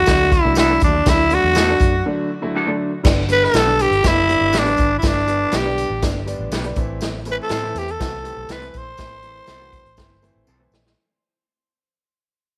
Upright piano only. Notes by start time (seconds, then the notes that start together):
0.07 D3 F#3 A3 D4
0.44 D3 F#3 A3 D4
0.70 D3 F#3 A3 D4
1.06 D3 F#3 A3 D4
1.31 D3 F#3 A3 D4
1.69 D3 F#3 A3 D4
2.06 D3 F#3 A3 D4
2.42 D3 F#3 A3 E4
2.67 D3 F#3 A3 D4
3.03 D3 G3 B3 D4
3.28 D3 G3 B3 D4
3.67 D3 G3 B3 D4
4.03 D3 G3 B3 D4
4.29 D3 G3 B3 D4
4.65 D3 G3 B3 D4
5.02 D3 G3 B3 E4
5.27 D3 G3 B3 D4
5.65 D3 G3 B3 D4
6.03 D3 G3 B3 D4
6.26 D3 G3 B3 D4
6.64 D3 G3 B3 D4
6.77 E3 A3 C4 E4
7.26 E3 A3 C4 E4
7.63 E3 A3 C4 E4
8.00 E3 A3 C4 F#4
8.24 E3 A3 C4 G4
8.61 E3 A3 C4 E4
8.99 E3 A3 C4 E4
9.23 E3 A3 C4 E4
9.59 E3 A3 C4 F#4
9.98 E3 A3 C4 E4
10.22 E3 A3 C4 E4
10.48 A5
10.59 E3 A3 C4 E4
10.72 D5